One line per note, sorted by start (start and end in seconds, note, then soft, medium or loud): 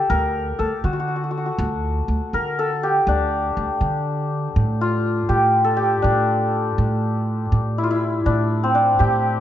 0.00 0.90 G4 medium
0.00 0.16 A4 medium
0.10 0.54 D2 medium
0.10 0.65 A#4 loud
0.59 0.70 D2 medium
0.59 2.40 A4 medium
0.84 1.50 D3 medium
0.84 0.93 F#4 medium
0.93 0.99 F#4 soft
1.00 1.08 F#4 medium
1.08 1.15 F#4 soft
1.16 1.23 F#4 soft
1.24 1.30 F#4 soft
1.31 1.37 F#4 soft
1.37 1.45 F#4 soft
1.46 2.89 F#4 soft
1.58 2.02 D2 loud
2.08 2.19 D2 medium
2.33 2.99 D3 medium
2.33 2.65 A#4 medium
2.59 5.51 A4 medium
2.83 5.29 G4 medium
3.07 3.51 D2 medium
3.07 6.02 D4 medium
3.57 3.67 D2 medium
3.81 4.47 D3 medium
4.56 5.22 A2 medium
4.81 7.83 F4 medium
5.29 5.95 A2 medium
5.29 5.76 G4 medium
5.64 8.57 A4 medium
5.77 8.91 G4 medium
6.02 6.70 A2 medium
6.02 8.25 D4 medium
6.78 7.44 A2 medium
7.52 8.18 A2 medium
7.78 7.89 E4 medium
7.83 7.97 F4 medium
7.91 9.40 E4 medium
8.26 8.92 A2 medium
8.26 8.75 D4 medium
8.63 9.40 C4 medium
8.75 9.40 D4 medium
8.99 9.40 A2 medium
8.99 9.40 G4 loud